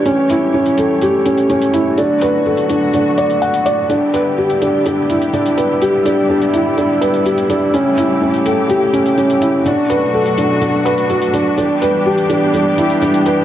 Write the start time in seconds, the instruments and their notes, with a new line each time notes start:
Already playing: string section E3 G4 C#5
0.06 string section G3 A3, felt piano C#4, closed hi-hat
0.30 felt piano E4, closed hi-hat
0.54 felt piano C#4
0.66 closed hi-hat
0.78 felt piano A4, closed hi-hat
1.02 felt piano G4, closed hi-hat
1.26 felt piano C#4, closed hi-hat
1.38 closed hi-hat
1.50 felt piano C#4, closed hi-hat
1.62 closed hi-hat
1.73 felt piano E4, closed hi-hat
1.97 string section D3 F#3 B3 F#4, felt piano D4, closed hi-hat
2.21 felt piano B4, closed hi-hat
2.46 felt piano A4
2.57 closed hi-hat
2.70 felt piano D4, closed hi-hat
2.94 felt piano D4, closed hi-hat
3.18 felt piano D5, closed hi-hat
3.30 closed hi-hat
3.42 felt piano F#5, closed hi-hat
3.54 closed hi-hat
3.65 felt piano D5, closed hi-hat
3.90 string section G3 E4 G4, felt piano D4, closed hi-hat
4.14 felt piano B4, closed hi-hat
4.38 felt piano G4
4.50 closed hi-hat
4.62 felt piano D4, closed hi-hat
4.86 felt piano D4, closed hi-hat
5.10 felt piano E4, closed hi-hat
5.22 closed hi-hat
5.34 felt piano D4, closed hi-hat
5.46 closed hi-hat
5.57 felt piano B4, closed hi-hat
5.81 felt piano G4, closed hi-hat
6.05 felt piano D4, closed hi-hat
6.30 felt piano D4
6.42 closed hi-hat
6.54 felt piano E4, closed hi-hat
6.78 felt piano D4, closed hi-hat
7.01 felt piano B4, closed hi-hat
7.14 closed hi-hat
7.25 felt piano G4, closed hi-hat
7.38 closed hi-hat
7.50 felt piano D4, closed hi-hat
7.74 string section C#3 A3 G4, felt piano C#4, closed hi-hat
7.98 felt piano E4, closed hi-hat
8.22 felt piano C#4
8.34 closed hi-hat
8.45 felt piano A4, closed hi-hat
8.70 felt piano G4, closed hi-hat
8.93 felt piano C#4, closed hi-hat
9.06 closed hi-hat
9.17 felt piano C#4, closed hi-hat
9.30 closed hi-hat
9.42 felt piano E4, closed hi-hat
9.66 string section B2 F#3 A3 D4 F#4, felt piano D4, closed hi-hat
9.90 felt piano B4, closed hi-hat
10.14 felt piano A4
10.26 closed hi-hat
10.38 felt piano D4, closed hi-hat
10.62 felt piano D4, closed hi-hat
10.85 felt piano B4, closed hi-hat
10.98 closed hi-hat
11.10 felt piano F#4, closed hi-hat
11.22 closed hi-hat
11.34 felt piano D4, closed hi-hat
11.58 string section E3 G3 B3 G4, felt piano D4, closed hi-hat
11.82 felt piano B4, closed hi-hat
12.06 felt piano G4
12.18 closed hi-hat
12.30 felt piano D4, closed hi-hat
12.54 felt piano D4, closed hi-hat
12.78 felt piano E4, closed hi-hat
12.90 closed hi-hat
13.02 felt piano D4, closed hi-hat
13.14 closed hi-hat
13.26 felt piano B4, closed hi-hat